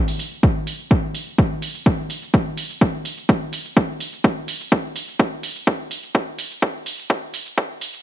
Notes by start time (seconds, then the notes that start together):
0.08 open hi-hat
0.19 open hi-hat
0.43 kick
0.67 open hi-hat
0.91 kick
1.15 open hi-hat
1.39 kick, shaker
1.62 open hi-hat, shaker
1.75 shaker
1.86 kick, shaker
2.10 open hi-hat, shaker
2.22 shaker
2.34 kick, shaker
2.57 open hi-hat, shaker
2.70 shaker
2.81 kick, shaker
3.05 open hi-hat, shaker
3.17 shaker
3.29 kick, shaker
3.53 open hi-hat, shaker
3.65 shaker
3.77 kick, shaker
4.00 open hi-hat, shaker
4.13 shaker
4.24 kick, shaker
4.48 open hi-hat, shaker
4.60 shaker
4.72 kick, shaker
4.96 open hi-hat, shaker
5.08 shaker
5.19 kick, shaker
5.43 open hi-hat, shaker
5.56 shaker
5.67 kick, shaker
5.91 open hi-hat, shaker
6.03 shaker
6.15 kick, shaker
6.39 open hi-hat, shaker
6.51 shaker
6.62 kick, shaker
6.86 open hi-hat, shaker
6.99 shaker
7.10 kick, shaker
7.34 open hi-hat, shaker
7.46 shaker
7.58 kick, shaker
7.81 open hi-hat, shaker
7.94 shaker